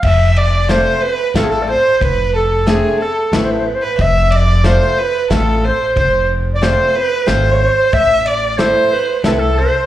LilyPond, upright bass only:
\new Staff \with { instrumentName = "Upright bass" } { \clef bass \time 3/4 \tempo 4 = 91 f,,2 a,,4 | f,,2 a,,4 | f,,2 a,,4 | f,,2 gis,,4 |
a,,2 c,4 | }